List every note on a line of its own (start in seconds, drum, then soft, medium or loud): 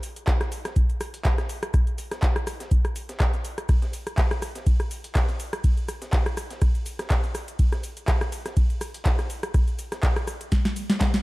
0.03 open hi-hat loud
0.03 cabasa medium
0.03 shaker medium
0.16 closed hi-hat medium
0.16 cabasa soft
0.27 kick loud
0.27 cross-stick medium
0.27 snare loud
0.27 clap loud
0.27 closed hi-hat medium
0.27 cabasa soft
0.27 shaker medium
0.41 cross-stick medium
0.41 snare soft
0.41 closed hi-hat soft
0.41 cabasa soft
0.52 open hi-hat loud
0.52 cabasa medium
0.52 shaker medium
0.65 cross-stick medium
0.65 snare soft
0.65 closed hi-hat medium
0.65 cabasa soft
0.76 kick loud
0.76 closed hi-hat soft
0.76 cabasa soft
0.76 shaker medium
0.90 closed hi-hat soft
0.90 cabasa soft
1.01 cross-stick medium
1.01 open hi-hat loud
1.01 cabasa medium
1.01 shaker medium
1.14 closed hi-hat soft
1.14 closed hi-hat medium
1.14 cabasa soft
1.25 kick loud
1.25 snare loud
1.25 clap loud
1.25 closed hi-hat medium
1.25 cabasa soft
1.25 shaker medium
1.38 cross-stick medium
1.38 snare medium
1.38 closed hi-hat soft
1.38 cabasa soft
1.49 open hi-hat loud
1.49 cabasa medium
1.49 shaker medium
1.63 cross-stick medium
1.63 closed hi-hat medium
1.63 cabasa soft
1.74 kick loud
1.74 cross-stick medium
1.74 closed hi-hat medium
1.74 cabasa soft
1.74 shaker medium
1.87 closed hi-hat soft
1.87 cabasa soft
1.98 open hi-hat loud
1.98 cabasa medium
1.98 shaker medium
2.11 cross-stick medium
2.11 snare soft
2.11 closed hi-hat soft
2.11 cabasa soft
2.22 kick loud
2.22 snare loud
2.22 clap loud
2.22 closed hi-hat medium
2.22 cabasa soft
2.22 shaker medium
2.36 cross-stick medium
2.36 closed hi-hat soft
2.36 cabasa soft
2.47 cross-stick medium
2.47 open hi-hat loud
2.47 cabasa medium
2.47 shaker medium
2.60 snare soft
2.60 closed hi-hat medium
2.60 cabasa soft
2.71 kick loud
2.71 closed hi-hat medium
2.71 cabasa soft
2.71 shaker medium
2.85 cross-stick medium
2.85 closed hi-hat soft
2.85 cabasa soft
2.96 open hi-hat loud
2.96 cabasa medium
2.96 shaker medium
3.09 snare soft
3.09 closed hi-hat medium
3.09 cabasa soft
3.20 kick loud
3.20 cross-stick medium
3.20 snare loud
3.20 clap loud
3.20 closed hi-hat soft
3.20 cabasa soft
3.20 shaker medium
3.33 snare soft
3.33 closed hi-hat soft
3.33 cabasa soft
3.45 open hi-hat loud
3.45 cabasa medium
3.45 shaker medium
3.58 cross-stick medium
3.58 closed hi-hat medium
3.58 cabasa soft
3.69 kick loud
3.69 cross-stick medium
3.69 closed hi-hat medium
3.69 ride medium
3.69 cabasa soft
3.69 shaker medium
3.82 snare soft
3.82 closed hi-hat soft
3.82 cabasa soft
3.93 open hi-hat loud
3.93 cabasa medium
3.93 shaker medium
4.07 cross-stick medium
4.07 closed hi-hat medium
4.07 cabasa soft
4.18 kick loud
4.18 snare loud
4.18 clap loud
4.18 closed hi-hat soft
4.18 ride medium
4.18 cabasa soft
4.18 shaker medium
4.31 cross-stick medium
4.31 snare soft
4.31 closed hi-hat soft
4.31 cabasa soft
4.42 cross-stick medium
4.42 open hi-hat loud
4.42 cabasa medium
4.42 shaker medium
4.55 snare soft
4.55 closed hi-hat medium
4.55 cabasa soft
4.67 kick loud
4.67 closed hi-hat soft
4.67 ride medium
4.67 cabasa soft
4.67 shaker medium
4.80 cross-stick medium
4.80 closed hi-hat soft
4.80 cabasa soft
4.91 open hi-hat loud
4.91 cabasa medium
4.91 shaker medium
5.04 closed hi-hat soft
5.04 closed hi-hat medium
5.04 cabasa soft
5.15 kick loud
5.15 cross-stick medium
5.15 snare loud
5.15 clap loud
5.15 closed hi-hat medium
5.15 ride medium
5.15 cabasa soft
5.15 shaker medium
5.29 snare medium
5.29 closed hi-hat soft
5.29 cabasa soft
5.40 open hi-hat loud
5.40 cabasa medium
5.40 shaker medium
5.53 cross-stick medium
5.53 closed hi-hat medium
5.53 cabasa soft
5.64 kick loud
5.64 closed hi-hat medium
5.64 ride medium
5.64 cabasa soft
5.64 shaker medium
5.77 closed hi-hat soft
5.77 cabasa soft
5.88 cross-stick medium
5.88 open hi-hat loud
5.88 cabasa medium
5.88 shaker medium
6.02 snare soft
6.02 closed hi-hat medium
6.02 cabasa soft
6.13 kick loud
6.13 snare loud
6.13 clap loud
6.13 closed hi-hat medium
6.13 ride medium
6.13 cabasa soft
6.13 shaker medium
6.26 cross-stick medium
6.26 closed hi-hat soft
6.26 cabasa soft
6.37 cross-stick medium
6.37 open hi-hat loud
6.37 cabasa medium
6.37 shaker medium
6.50 snare soft
6.50 closed hi-hat medium
6.50 cabasa soft
6.62 kick loud
6.62 cross-stick medium
6.62 closed hi-hat medium
6.62 ride medium
6.62 cabasa soft
6.62 shaker medium
6.75 closed hi-hat soft
6.75 cabasa soft
6.86 open hi-hat loud
6.86 cabasa medium
6.86 shaker medium
6.99 cross-stick medium
6.99 snare soft
6.99 closed hi-hat medium
6.99 cabasa soft
7.10 kick loud
7.10 snare loud
7.10 clap loud
7.10 closed hi-hat medium
7.10 ride medium
7.10 cabasa soft
7.10 shaker medium
7.24 snare soft
7.24 closed hi-hat soft
7.24 cabasa soft
7.35 cross-stick medium
7.35 open hi-hat loud
7.35 cabasa medium
7.35 shaker medium
7.48 closed hi-hat medium
7.48 cabasa soft
7.59 kick loud
7.59 closed hi-hat medium
7.59 ride medium
7.59 cabasa soft
7.59 shaker medium
7.72 cross-stick medium
7.72 snare soft
7.72 closed hi-hat soft
7.72 cabasa soft
7.84 open hi-hat loud
7.84 cabasa medium
7.84 shaker medium
7.97 closed hi-hat medium
7.97 cabasa soft
8.08 kick loud
8.08 cross-stick medium
8.08 snare loud
8.08 clap loud
8.08 closed hi-hat medium
8.08 ride medium
8.08 cabasa soft
8.08 shaker medium
8.21 cross-stick medium
8.21 snare soft
8.21 closed hi-hat soft
8.21 cabasa soft
8.32 open hi-hat loud
8.32 cabasa medium
8.32 shaker medium
8.46 cross-stick medium
8.46 snare soft
8.46 closed hi-hat medium
8.46 cabasa soft
8.57 kick loud
8.57 closed hi-hat medium
8.57 ride medium
8.57 cabasa soft
8.57 shaker medium
8.70 closed hi-hat soft
8.70 cabasa soft
8.81 cross-stick medium
8.81 open hi-hat loud
8.81 cabasa medium
8.81 shaker medium
8.94 closed hi-hat medium
8.94 closed hi-hat soft
8.94 cabasa soft
9.05 kick loud
9.05 snare loud
9.05 clap loud
9.05 closed hi-hat medium
9.05 ride medium
9.05 cabasa soft
9.05 shaker medium
9.19 cross-stick medium
9.19 snare medium
9.19 closed hi-hat soft
9.19 cabasa soft
9.30 open hi-hat loud
9.30 cabasa medium
9.43 cross-stick medium
9.43 closed hi-hat medium
9.43 cabasa soft
9.54 kick loud
9.54 cross-stick medium
9.54 closed hi-hat medium
9.54 ride medium
9.54 cabasa soft
9.54 shaker medium
9.68 closed hi-hat soft
9.68 cabasa soft
9.79 open hi-hat loud
9.79 cabasa medium
9.79 shaker medium
9.92 cross-stick medium
9.92 snare soft
9.92 closed hi-hat medium
9.92 cabasa soft
10.03 kick loud
10.03 snare loud
10.03 clap loud
10.03 closed hi-hat medium
10.03 ride medium
10.03 cabasa soft
10.03 shaker medium
10.16 cross-stick medium
10.16 closed hi-hat soft
10.16 cabasa soft
10.27 cross-stick medium
10.27 open hi-hat loud
10.27 cabasa medium
10.41 closed hi-hat medium
10.41 cabasa soft
10.52 kick loud
10.52 snare medium
10.52 closed hi-hat medium
10.52 ride medium
10.52 cabasa soft
10.52 shaker medium
10.65 snare medium
10.65 closed hi-hat soft
10.65 cabasa soft
10.76 open hi-hat loud
10.76 cabasa medium
10.76 shaker medium
10.90 snare soft
10.90 snare medium
10.90 closed hi-hat medium
10.90 cabasa soft
11.01 kick loud
11.01 snare medium
11.01 snare loud
11.01 clap loud
11.01 closed hi-hat medium
11.01 ride medium
11.01 cabasa soft
11.01 shaker medium
11.14 snare medium
11.14 snare soft
11.14 closed hi-hat soft
11.14 cabasa soft